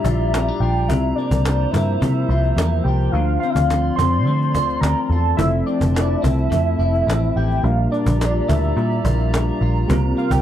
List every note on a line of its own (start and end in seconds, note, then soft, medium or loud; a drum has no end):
0.00 0.89 A#2 medium
0.00 1.50 G3 medium
0.00 0.33 D4 medium
0.00 0.87 G4 medium
0.00 0.86 D5 medium
0.00 0.62 E5 loud
0.00 3.10 A#5 medium
0.04 0.49 A#1 medium
0.04 0.62 F4 medium
0.04 cajon bass medium
0.20 cajon slap soft
0.34 0.48 C4 medium
0.34 cajon slap loud
0.48 0.95 D4 medium
0.60 0.89 A#1 medium
0.60 1.46 F4 medium
0.60 0.90 G5 medium
0.76 cajon slap soft
0.89 1.12 C2 loud
0.89 3.15 C3 medium
0.89 7.61 F3 medium
0.89 3.12 C5 medium
0.89 1.15 E5 loud
0.89 cajon bass loud
1.15 1.74 A#3 medium
1.15 1.73 D5 loud
1.15 cajon slap soft
1.31 1.65 C2 loud
1.31 cajon bass medium
1.45 2.30 F4 medium
1.45 cajon slap loud
1.71 1.96 G2 medium
1.71 2.85 E5 loud
1.71 cajon bass loud
1.75 2.58 A#3 medium
2.02 2.24 C3 loud
2.02 3.20 G3 medium
2.02 cajon bass medium
2.29 2.52 C2 loud
2.29 2.87 F4 medium
2.29 cajon slap soft
2.44 cajon slap soft
2.57 2.80 E2 medium
2.57 3.21 A#3 medium
2.57 cajon slap loud
2.72 cajon slap soft
2.84 3.08 C2 medium
2.84 3.11 G5 medium
2.88 3.70 F4 medium
3.00 cajon slap soft
3.12 3.36 D2 loud
3.12 5.39 D3 medium
3.12 5.37 D5 medium
3.12 3.39 F5 loud
3.12 5.37 C6 medium
3.12 cajon slap soft
3.40 3.99 C4 medium
3.40 3.51 F5 loud
3.40 cajon slap soft
3.50 3.55 E5 medium
3.50 3.95 F5 loud
3.56 3.90 D2 loud
3.56 cajon bass medium
3.70 4.55 F4 medium
3.70 cajon slap loud
3.96 4.25 F2 medium
3.96 4.83 C4 medium
3.96 4.82 C6 loud
3.96 cajon bass loud
4.13 cajon slap soft
4.25 4.54 D3 loud
4.25 6.50 A3 medium
4.25 cajon slap soft
4.42 cajon slap soft
4.54 4.77 D2 medium
4.54 5.12 F4 medium
4.54 cajon bass loud
4.69 cajon slap soft
4.81 4.93 D2 loud
4.81 5.67 C4 medium
4.81 5.05 A#5 loud
4.81 cajon slap loud
5.05 5.36 A5 loud
5.05 5.11 A#5 medium
5.10 5.33 E2 medium
5.10 5.94 F4 medium
5.10 cajon slap soft
5.24 cajon slap soft
5.37 5.61 F1 loud
5.37 7.59 F3 medium
5.37 8.80 F3 medium
5.37 7.60 A3 medium
5.37 7.60 C4 medium
5.37 7.61 E4 medium
5.37 5.64 E5 loud
5.37 7.63 E5 medium
5.37 7.63 A5 loud
5.37 cajon bass loud
5.42 7.62 A4 medium
5.66 6.21 C4 medium
5.66 6.24 D5 loud
5.66 cajon slap soft
5.81 6.15 F1 loud
5.81 cajon bass loud
5.95 6.78 E4 medium
5.95 cajon slap loud
6.22 6.46 C2 loud
6.22 7.07 C4 medium
6.22 7.38 E5 loud
6.22 cajon bass loud
6.38 cajon slap soft
6.50 6.74 F2 medium
6.50 7.69 A3 medium
6.50 cajon bass medium
6.66 cajon slap soft
6.79 7.02 F1 loud
6.79 7.36 E4 medium
6.79 cajon slap soft
6.95 cajon slap soft
7.07 7.30 A1 loud
7.07 7.70 C4 medium
7.07 cajon slap loud
7.36 7.59 A1 medium
7.36 7.70 E4 medium
7.36 7.65 G5 loud
7.51 cajon slap soft
7.62 7.86 A#1 loud
7.62 9.90 A#2 medium
7.62 9.84 G3 medium
7.62 9.85 A#3 medium
7.62 9.86 D4 medium
7.62 9.86 F4 medium
7.62 9.88 G4 medium
7.62 9.87 D5 medium
7.62 7.91 F5 loud
7.62 10.42 A#5 loud
7.62 cajon slap soft
7.67 9.87 A#4 medium
7.92 8.47 D4 medium
7.92 8.50 D5 loud
7.92 cajon slap soft
8.06 8.40 A#1 loud
8.06 cajon bass medium
8.21 9.05 F4 medium
8.21 cajon slap loud
8.48 8.72 D2 medium
8.48 9.33 D4 medium
8.48 9.61 E5 medium
8.48 cajon bass loud
8.63 cajon slap soft
8.77 8.99 A#2 loud
8.77 10.42 G3 medium
8.77 cajon slap soft
8.91 cajon slap soft
9.05 9.50 A#1 loud
9.05 9.62 F4 medium
9.05 cajon bass medium
9.19 cajon slap soft
9.34 9.96 D4 medium
9.34 cajon slap loud
9.61 9.84 A#1 medium
9.61 10.42 F4 medium
9.75 cajon slap soft
9.88 10.12 C2 loud
9.88 10.42 C3 medium
9.88 10.42 G3 medium
9.88 10.42 A#3 medium
9.88 10.42 C4 medium
9.88 10.42 F4 medium
9.88 10.42 C5 medium
9.88 cajon bass loud
9.93 10.42 A#4 medium
10.17 10.42 A#3 medium
10.17 10.33 F5 loud
10.17 cajon slap soft
10.31 10.42 C2 loud
10.31 10.42 G5 loud
10.31 cajon bass medium